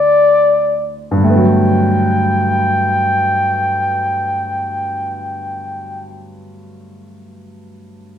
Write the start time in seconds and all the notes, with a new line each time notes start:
Already playing: D2 D3 A3 C4 E4 F#4 D5
1.11 G2
1.17 D3
1.24 A3 G5
1.30 B3
1.36 F#3